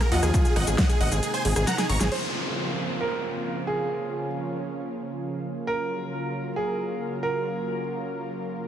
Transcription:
Already playing: D#3 F3 F#3 A#3 F4
0.01 A#4, cross-stick, snare, closed hi-hat, shaker
0.12 D#2 F3 F4 D#5 F#5, open hi-hat
0.23 D#2 G#4, cross-stick, closed hi-hat, shaker
0.34 C3 G#3 D#4 G#4, kick, closed hi-hat, shaker
0.45 G#4, closed hi-hat, shaker
0.56 G#1 D#5 F#5, cross-stick, open hi-hat
0.67 G#1 G#4, closed hi-hat, shaker
0.78 D#5 F#5, kick, snare, closed hi-hat, shaker
0.89 G#4, closed hi-hat, shaker
1.01 G#1 D#5 F#5, open hi-hat
1.12 G#1 G#4, closed hi-hat, shaker
1.23 G#4, closed hi-hat, shaker
1.34 C5 G#5, closed hi-hat, shaker
1.45 G#1 G#4, open hi-hat
1.56 G#1 G#4, cross-stick, closed hi-hat, shaker
1.67 F#5 A#5, snare, closed hi-hat, shaker
1.78 G#4, snare, closed hi-hat, shaker
1.89 G#1 A#5 C#6, open hi-hat
2.01 G#1 G#4, snare, closed hi-hat, shaker
2.12 C#3 F3 A#3 C4 F4 C5, crash, downlifter
3.01 A#4
3.67 G#4
3.89 C#4
5.67 F#3 F4 A#4
6.56 G#4
7.23 A#4

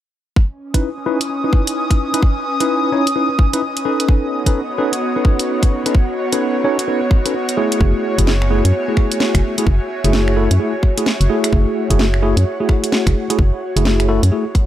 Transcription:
0.36 C#4 B4 D#5 G#5, kick
0.67 D#6
0.74 C#4 D#4 E4 B4, kick, closed hi-hat
1.06 C#4 D#4 E4 B4
1.21 closed hi-hat
1.44 C#4 D#4 E4 B4
1.53 kick
1.67 closed hi-hat
1.91 kick, closed hi-hat
2.14 C#4 D#4 E4 B4, closed hi-hat
2.23 kick
2.60 C#4 D#4 E4 B4, closed hi-hat
2.92 C#4 D#4 E4 C#5
3.07 closed hi-hat
3.16 C#4 D#4 E4 B4
3.39 kick
3.53 C#4 D#4 E4 B4, closed hi-hat
3.77 closed hi-hat
3.85 B3 C#4 D#4 A4 B4 C#5 F#5
3.99 F#4, closed hi-hat
4.05 C#5, kick
4.46 C#4 D#4 A4 B4, kick, closed hi-hat
4.78 C#4 D#4 A4 B4
4.93 closed hi-hat
5.16 C#4 D#4 A4 B4
5.25 kick
5.39 closed hi-hat
5.63 kick, closed hi-hat
5.86 C#4 D#4 A4 B4, closed hi-hat
5.95 kick
6.32 C#4 D#4 A4 B4, closed hi-hat
6.64 C#4 D#4 A4 C#5
6.79 closed hi-hat
6.88 C#4 D#4 A4 B4
7.11 kick
7.25 C#4 D#4 A4 B4, closed hi-hat
7.49 closed hi-hat
7.57 A3 E4 F#4 G#4 C#5 E5 G#5
7.72 closed hi-hat
7.81 F#1, kick
8.18 F#1 A3 E4 F#4 G#4, kick, closed hi-hat
8.27 snare
8.42 finger snap
8.51 A3 E4 F#4 G#4
8.65 F#2, closed hi-hat
8.88 A3 E4 F#4 G#4
8.97 finger snap, kick
9.12 closed hi-hat
9.20 snare
9.35 F#1, finger snap, kick, closed hi-hat
9.58 A3 E4 F#4 G#4, closed hi-hat
9.67 F#1, kick
10.04 F#1 A3 E4 F#4 G#4, closed hi-hat
10.13 snare
10.28 finger snap
10.36 A3 E4 F#4 A4
10.51 F#2, closed hi-hat
10.60 A3 E4 F#4 G#4
10.83 kick
10.98 A3 E4 F#4 G#4, closed hi-hat
11.06 snare
11.21 F#1, closed hi-hat
11.29 A3 E4 F#4 G#4 F#5
11.44 finger snap, closed hi-hat
11.53 F#1, kick
11.90 F#1 A3 E4 F#4 G#4, kick, closed hi-hat
11.99 snare
12.14 finger snap
12.23 A3 E4 F#4 G#4
12.37 F#2, closed hi-hat
12.60 A3 E4 F#4 G#4
12.69 finger snap, kick
12.84 closed hi-hat
12.92 snare
13.07 F#1, finger snap, kick, closed hi-hat
13.30 A3 E4 F#4 G#4, closed hi-hat
13.39 F#1, kick
13.76 F#1 A3 E4 F#4 G#4, closed hi-hat
13.85 snare
14.00 finger snap, closed hi-hat
14.09 A3 E4 F#4 A4
14.23 F#2, closed hi-hat
14.32 A3 E4 F#4 G#4
14.55 kick, closed hi-hat

